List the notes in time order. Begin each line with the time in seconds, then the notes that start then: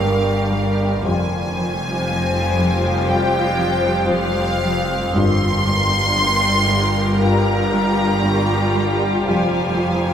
Already playing: G1 G2 G3 D4 G4 A#4 D5 F5 G5
0.02 G2
0.54 G3
1.03 F1 F2 G3 F4 G4 C5 F5 G#5
1.57 F3
2.06 F3
2.57 F2
3.08 F2 G3 F4 G5
3.61 F3
4.11 F2 F5
4.63 F3
5.14 G1 G2 G3 F4 G4 A#4 D5 F5 A#5 C6
5.18 G1
5.68 G3
6.19 G3
6.71 G2
7.20 G2 G3 F4 A#5
7.73 G3
8.25 G2
8.77 G3
9.25 F1 F2 G3 F4 C5 G#5
9.81 F3